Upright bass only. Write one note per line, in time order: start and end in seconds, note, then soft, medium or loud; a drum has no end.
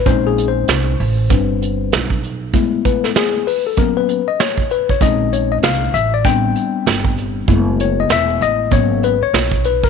0.06 0.65 A#1 loud
0.69 0.98 C2 medium
1.00 1.29 A1 loud
1.30 1.89 G1 medium
1.93 2.51 B1 medium
5.01 5.60 A#1 loud
5.63 5.92 C2 medium
5.94 6.52 A1 loud
6.86 7.45 G1 medium
7.48 8.07 F#1 loud
8.10 8.39 E1 medium
8.41 8.70 A1 medium
8.72 9.19 G#1 loud
9.21 muted upright bass stroke medium
9.33 9.90 B1 medium